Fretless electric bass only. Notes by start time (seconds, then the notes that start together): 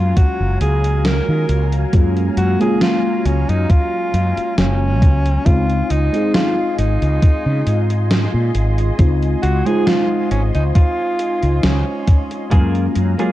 Already playing: F#2
0.17 muted fretless electric bass stroke
0.40 F#1
0.61 C#2
1.28 D#3
1.49 C#2
1.93 F#2
2.37 F#2
3.25 C#2
3.49 F#2
4.14 F#2
4.37 muted fretless electric bass stroke
4.58 F#1
5.02 C#2
5.46 C#2
5.90 C#2
6.79 G#1
7.02 C#2
7.46 C#3
7.67 G#2
8.34 A#2
8.55 G#1
8.99 C#2
9.43 C#2
10.31 G#1
10.55 C#2
11.43 C#2
11.64 C#2
12.52 F#2
12.96 F#2